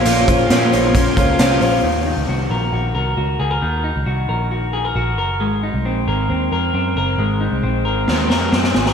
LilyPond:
<<
  \new Staff \with { instrumentName = "Pipe organ" } { \time 4/4 \key ees \dorian \tempo 4 = 134 <bes' des'' f'' c'''>1 | r1 | r1 | r1 |
r1 | }
  \new Staff \with { instrumentName = "Clean electric guitar" } { \time 4/4 \key ees \dorian <bes, des' f'>8 f'8 des'8 ees'16 f'16 des'8 f'8 des'8 f'8 | ees8 ees'8 ges'8 bes'8 ges'8 bes'8 ges'8 aes'16 bes'16 | ees8 ees'8 ges'8 bes'8 ges'8 aes'16 bes'16 ges'8 bes'8 | aes8 ees'8 c'8 bes'8 c'8 bes'8 c'8 bes'8 |
aes8 ees'8 c'8 bes'8 c'8 bes'8 c'8 aes'16 bes'16 | }
  \new Staff \with { instrumentName = "Twelve-string acoustic guitar" } { \time 4/4 \key ees \dorian <bes, f bes des' f' c''>8 <bes des' f' c''>8 <bes, f bes des' f' c''>8 <bes des' f' c''>8 <bes des' f' c''>8 <bes des' f' c''>8 <bes, f bes des' f' c''>8 <bes des' f' c''>8 | r1 | r1 | r1 |
r1 | }
  \new Staff \with { instrumentName = "Picked electric bass" } { \clef bass \time 4/4 \key ees \dorian bes,,4 bes,8 bes,,4 des,8 c,8 bes,,8 | ees,8. des,16 c,8 bes,,8 bes,,8 c,8 des,8 des,8 | ees,8. des,16 c,8 bes,,4. bes,,8 ges,,8 | aes,,8. c,16 bes,,8 aes,,8 ees,8 f,8 ges,8 ges,,8 |
aes,,8. c,16 bes,,8 aes,,8 ees,8 f,8 ges,8 aes,,8 | }
  \new DrumStaff \with { instrumentName = "Drums" } \drummode { \time 4/4 hh8 <hh bd>8 <hh sn>8 hh8 <hh bd>8 <hh bd>8 <hh sn>8 hho8 | r4 r4 r4 r4 | r4 r4 r4 r4 | r4 r4 r4 r4 |
r4 r4 sn8 sn8 sn16 sn16 sn16 sn16 | }
>>